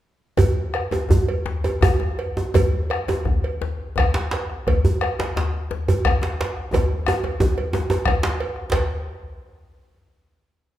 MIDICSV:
0, 0, Header, 1, 4, 480
1, 0, Start_track
1, 0, Tempo, 361011
1, 500, Time_signature, 12, 3, 24, 8
1, 4336, Tempo, 349243
1, 8176, Tempo, 333890
1, 11536, Tempo, 317125
1, 15153, End_track
2, 0, Start_track
2, 0, Title_t, "Bombo"
2, 503, Note_on_c, 9, 37, 25
2, 503, Note_on_c, 9, 43, 75
2, 636, Note_off_c, 9, 37, 0
2, 636, Note_off_c, 9, 43, 0
2, 981, Note_on_c, 9, 37, 67
2, 1114, Note_off_c, 9, 37, 0
2, 1231, Note_on_c, 9, 37, 28
2, 1364, Note_off_c, 9, 37, 0
2, 1462, Note_on_c, 9, 37, 23
2, 1462, Note_on_c, 9, 43, 86
2, 1595, Note_off_c, 9, 37, 0
2, 1595, Note_off_c, 9, 43, 0
2, 2426, Note_on_c, 9, 37, 91
2, 2426, Note_on_c, 9, 43, 88
2, 2559, Note_off_c, 9, 37, 0
2, 2559, Note_off_c, 9, 43, 0
2, 2678, Note_on_c, 9, 37, 27
2, 2811, Note_off_c, 9, 37, 0
2, 3152, Note_on_c, 9, 37, 26
2, 3285, Note_off_c, 9, 37, 0
2, 3398, Note_on_c, 9, 37, 30
2, 3398, Note_on_c, 9, 43, 90
2, 3531, Note_off_c, 9, 37, 0
2, 3531, Note_off_c, 9, 43, 0
2, 3870, Note_on_c, 9, 37, 72
2, 4003, Note_off_c, 9, 37, 0
2, 4106, Note_on_c, 9, 37, 26
2, 4239, Note_off_c, 9, 37, 0
2, 4329, Note_on_c, 9, 37, 29
2, 4329, Note_on_c, 9, 43, 88
2, 4466, Note_off_c, 9, 37, 0
2, 4466, Note_off_c, 9, 43, 0
2, 5320, Note_on_c, 9, 37, 90
2, 5320, Note_on_c, 9, 43, 89
2, 5458, Note_off_c, 9, 37, 0
2, 5458, Note_off_c, 9, 43, 0
2, 5548, Note_on_c, 9, 37, 27
2, 5686, Note_off_c, 9, 37, 0
2, 6033, Note_on_c, 9, 37, 24
2, 6170, Note_off_c, 9, 37, 0
2, 6270, Note_on_c, 9, 37, 29
2, 6270, Note_on_c, 9, 43, 90
2, 6407, Note_off_c, 9, 37, 0
2, 6407, Note_off_c, 9, 43, 0
2, 6743, Note_on_c, 9, 37, 76
2, 6880, Note_off_c, 9, 37, 0
2, 6988, Note_on_c, 9, 37, 27
2, 7126, Note_off_c, 9, 37, 0
2, 7226, Note_on_c, 9, 37, 27
2, 7364, Note_off_c, 9, 37, 0
2, 8168, Note_on_c, 9, 37, 89
2, 8168, Note_on_c, 9, 43, 89
2, 8311, Note_off_c, 9, 37, 0
2, 8311, Note_off_c, 9, 43, 0
2, 8416, Note_on_c, 9, 37, 27
2, 8560, Note_off_c, 9, 37, 0
2, 8911, Note_on_c, 9, 37, 26
2, 9055, Note_off_c, 9, 37, 0
2, 9142, Note_on_c, 9, 37, 28
2, 9142, Note_on_c, 9, 43, 85
2, 9285, Note_off_c, 9, 37, 0
2, 9285, Note_off_c, 9, 43, 0
2, 9628, Note_on_c, 9, 37, 74
2, 9772, Note_off_c, 9, 37, 0
2, 10113, Note_on_c, 9, 43, 88
2, 10257, Note_off_c, 9, 43, 0
2, 10597, Note_on_c, 9, 37, 28
2, 10741, Note_off_c, 9, 37, 0
2, 11051, Note_on_c, 9, 37, 91
2, 11051, Note_on_c, 9, 43, 86
2, 11195, Note_off_c, 9, 37, 0
2, 11195, Note_off_c, 9, 43, 0
2, 11323, Note_on_c, 9, 37, 28
2, 11467, Note_off_c, 9, 37, 0
2, 11790, Note_on_c, 9, 37, 25
2, 11941, Note_off_c, 9, 37, 0
2, 12039, Note_on_c, 9, 43, 66
2, 12190, Note_off_c, 9, 43, 0
2, 15153, End_track
3, 0, Start_track
3, 0, Title_t, "Djembe"
3, 497, Note_on_c, 9, 62, 67
3, 497, Note_on_c, 9, 63, 67
3, 497, Note_on_c, 9, 64, 59
3, 512, Note_off_c, 9, 64, 0
3, 512, Note_on_c, 9, 64, 96
3, 630, Note_off_c, 9, 62, 0
3, 630, Note_off_c, 9, 63, 0
3, 645, Note_off_c, 9, 64, 0
3, 1215, Note_on_c, 9, 62, 53
3, 1215, Note_on_c, 9, 63, 56
3, 1227, Note_off_c, 9, 63, 0
3, 1227, Note_on_c, 9, 63, 76
3, 1348, Note_off_c, 9, 62, 0
3, 1360, Note_off_c, 9, 63, 0
3, 1446, Note_on_c, 9, 62, 21
3, 1446, Note_on_c, 9, 64, 71
3, 1470, Note_off_c, 9, 64, 0
3, 1470, Note_on_c, 9, 64, 94
3, 1579, Note_off_c, 9, 62, 0
3, 1603, Note_off_c, 9, 64, 0
3, 1937, Note_on_c, 9, 62, 74
3, 1937, Note_on_c, 9, 63, 69
3, 2070, Note_off_c, 9, 62, 0
3, 2070, Note_off_c, 9, 63, 0
3, 2185, Note_on_c, 9, 63, 68
3, 2318, Note_off_c, 9, 63, 0
3, 2407, Note_on_c, 9, 62, 26
3, 2407, Note_on_c, 9, 64, 76
3, 2430, Note_off_c, 9, 64, 0
3, 2430, Note_on_c, 9, 64, 96
3, 2540, Note_off_c, 9, 62, 0
3, 2563, Note_off_c, 9, 64, 0
3, 2654, Note_on_c, 9, 62, 53
3, 2654, Note_on_c, 9, 63, 53
3, 2787, Note_off_c, 9, 62, 0
3, 2787, Note_off_c, 9, 63, 0
3, 3150, Note_on_c, 9, 63, 71
3, 3283, Note_off_c, 9, 63, 0
3, 3379, Note_on_c, 9, 62, 77
3, 3379, Note_on_c, 9, 63, 76
3, 3379, Note_on_c, 9, 64, 73
3, 3389, Note_off_c, 9, 64, 0
3, 3389, Note_on_c, 9, 64, 84
3, 3512, Note_off_c, 9, 62, 0
3, 3512, Note_off_c, 9, 63, 0
3, 3522, Note_off_c, 9, 64, 0
3, 4100, Note_on_c, 9, 62, 63
3, 4100, Note_on_c, 9, 63, 63
3, 4108, Note_off_c, 9, 63, 0
3, 4108, Note_on_c, 9, 63, 74
3, 4233, Note_off_c, 9, 62, 0
3, 4241, Note_off_c, 9, 63, 0
3, 4325, Note_on_c, 9, 62, 23
3, 4325, Note_on_c, 9, 64, 78
3, 4462, Note_off_c, 9, 62, 0
3, 4462, Note_off_c, 9, 64, 0
3, 4823, Note_on_c, 9, 62, 71
3, 4823, Note_on_c, 9, 63, 70
3, 4960, Note_off_c, 9, 62, 0
3, 4960, Note_off_c, 9, 63, 0
3, 5293, Note_on_c, 9, 62, 26
3, 5293, Note_on_c, 9, 64, 82
3, 5431, Note_off_c, 9, 62, 0
3, 5431, Note_off_c, 9, 64, 0
3, 5546, Note_on_c, 9, 62, 69
3, 5555, Note_off_c, 9, 62, 0
3, 5555, Note_on_c, 9, 62, 56
3, 5555, Note_on_c, 9, 63, 53
3, 5692, Note_off_c, 9, 62, 0
3, 5692, Note_off_c, 9, 63, 0
3, 5782, Note_on_c, 9, 62, 71
3, 5920, Note_off_c, 9, 62, 0
3, 6281, Note_on_c, 9, 62, 75
3, 6281, Note_on_c, 9, 63, 62
3, 6281, Note_on_c, 9, 64, 68
3, 6418, Note_off_c, 9, 62, 0
3, 6418, Note_off_c, 9, 63, 0
3, 6418, Note_off_c, 9, 64, 0
3, 6515, Note_on_c, 9, 64, 70
3, 6652, Note_off_c, 9, 64, 0
3, 6993, Note_on_c, 9, 62, 55
3, 6993, Note_on_c, 9, 63, 58
3, 6997, Note_off_c, 9, 62, 0
3, 6997, Note_on_c, 9, 62, 70
3, 7131, Note_off_c, 9, 63, 0
3, 7134, Note_off_c, 9, 62, 0
3, 7227, Note_on_c, 9, 62, 21
3, 7227, Note_on_c, 9, 64, 68
3, 7235, Note_off_c, 9, 62, 0
3, 7235, Note_on_c, 9, 62, 73
3, 7364, Note_off_c, 9, 64, 0
3, 7372, Note_off_c, 9, 62, 0
3, 7700, Note_on_c, 9, 62, 64
3, 7700, Note_on_c, 9, 63, 64
3, 7837, Note_off_c, 9, 62, 0
3, 7837, Note_off_c, 9, 63, 0
3, 7942, Note_on_c, 9, 64, 74
3, 8080, Note_off_c, 9, 64, 0
3, 8173, Note_on_c, 9, 62, 23
3, 8173, Note_on_c, 9, 64, 69
3, 8316, Note_off_c, 9, 62, 0
3, 8316, Note_off_c, 9, 64, 0
3, 8409, Note_on_c, 9, 62, 44
3, 8409, Note_on_c, 9, 63, 48
3, 8425, Note_off_c, 9, 62, 0
3, 8425, Note_on_c, 9, 62, 64
3, 8553, Note_off_c, 9, 63, 0
3, 8569, Note_off_c, 9, 62, 0
3, 8682, Note_on_c, 9, 62, 68
3, 8826, Note_off_c, 9, 62, 0
3, 9154, Note_on_c, 9, 62, 62
3, 9154, Note_on_c, 9, 63, 60
3, 9154, Note_on_c, 9, 64, 62
3, 9164, Note_off_c, 9, 63, 0
3, 9164, Note_on_c, 9, 63, 83
3, 9298, Note_off_c, 9, 62, 0
3, 9298, Note_off_c, 9, 64, 0
3, 9308, Note_off_c, 9, 63, 0
3, 9649, Note_on_c, 9, 63, 88
3, 9792, Note_off_c, 9, 63, 0
3, 9876, Note_on_c, 9, 62, 54
3, 9876, Note_on_c, 9, 63, 52
3, 10020, Note_off_c, 9, 62, 0
3, 10020, Note_off_c, 9, 63, 0
3, 10114, Note_on_c, 9, 63, 90
3, 10126, Note_on_c, 9, 64, 63
3, 10257, Note_off_c, 9, 63, 0
3, 10270, Note_off_c, 9, 64, 0
3, 10360, Note_on_c, 9, 62, 18
3, 10504, Note_off_c, 9, 62, 0
3, 10588, Note_on_c, 9, 63, 88
3, 10605, Note_off_c, 9, 63, 0
3, 10605, Note_on_c, 9, 62, 55
3, 10605, Note_on_c, 9, 63, 60
3, 10749, Note_off_c, 9, 62, 0
3, 10749, Note_off_c, 9, 63, 0
3, 10827, Note_on_c, 9, 63, 90
3, 10855, Note_on_c, 9, 62, 19
3, 10971, Note_off_c, 9, 63, 0
3, 10998, Note_off_c, 9, 62, 0
3, 11087, Note_on_c, 9, 64, 67
3, 11231, Note_off_c, 9, 64, 0
3, 11307, Note_on_c, 9, 62, 88
3, 11316, Note_off_c, 9, 62, 0
3, 11316, Note_on_c, 9, 62, 43
3, 11316, Note_on_c, 9, 63, 48
3, 11460, Note_off_c, 9, 62, 0
3, 11460, Note_off_c, 9, 63, 0
3, 12023, Note_on_c, 9, 64, 70
3, 12031, Note_on_c, 9, 62, 87
3, 12174, Note_off_c, 9, 64, 0
3, 12182, Note_off_c, 9, 62, 0
3, 15153, End_track
4, 0, Start_track
4, 0, Title_t, "Drums"
4, 498, Note_on_c, 9, 56, 55
4, 631, Note_off_c, 9, 56, 0
4, 995, Note_on_c, 9, 56, 45
4, 1128, Note_off_c, 9, 56, 0
4, 1226, Note_on_c, 9, 56, 36
4, 1359, Note_off_c, 9, 56, 0
4, 1708, Note_on_c, 9, 56, 46
4, 1841, Note_off_c, 9, 56, 0
4, 2185, Note_on_c, 9, 56, 49
4, 2318, Note_off_c, 9, 56, 0
4, 2431, Note_on_c, 9, 56, 49
4, 2564, Note_off_c, 9, 56, 0
4, 2909, Note_on_c, 9, 56, 50
4, 3042, Note_off_c, 9, 56, 0
4, 3391, Note_on_c, 9, 56, 66
4, 3524, Note_off_c, 9, 56, 0
4, 3857, Note_on_c, 9, 56, 49
4, 3990, Note_off_c, 9, 56, 0
4, 4102, Note_on_c, 9, 56, 44
4, 4235, Note_off_c, 9, 56, 0
4, 4584, Note_on_c, 9, 56, 42
4, 4722, Note_off_c, 9, 56, 0
4, 5335, Note_on_c, 9, 56, 51
4, 5472, Note_off_c, 9, 56, 0
4, 5811, Note_on_c, 9, 56, 45
4, 5948, Note_off_c, 9, 56, 0
4, 6282, Note_on_c, 9, 56, 56
4, 6419, Note_off_c, 9, 56, 0
4, 6756, Note_on_c, 9, 56, 44
4, 6893, Note_off_c, 9, 56, 0
4, 6997, Note_on_c, 9, 56, 39
4, 7135, Note_off_c, 9, 56, 0
4, 7941, Note_on_c, 9, 56, 44
4, 8078, Note_off_c, 9, 56, 0
4, 8177, Note_on_c, 9, 56, 50
4, 8321, Note_off_c, 9, 56, 0
4, 8680, Note_on_c, 9, 56, 45
4, 8824, Note_off_c, 9, 56, 0
4, 9163, Note_on_c, 9, 56, 55
4, 9307, Note_off_c, 9, 56, 0
4, 9649, Note_on_c, 9, 56, 45
4, 9793, Note_off_c, 9, 56, 0
4, 9881, Note_on_c, 9, 56, 39
4, 10025, Note_off_c, 9, 56, 0
4, 10364, Note_on_c, 9, 56, 45
4, 10507, Note_off_c, 9, 56, 0
4, 10845, Note_on_c, 9, 56, 46
4, 10988, Note_off_c, 9, 56, 0
4, 11083, Note_on_c, 9, 56, 52
4, 11227, Note_off_c, 9, 56, 0
4, 11554, Note_on_c, 9, 56, 45
4, 11705, Note_off_c, 9, 56, 0
4, 12034, Note_on_c, 9, 56, 74
4, 12185, Note_off_c, 9, 56, 0
4, 15153, End_track
0, 0, End_of_file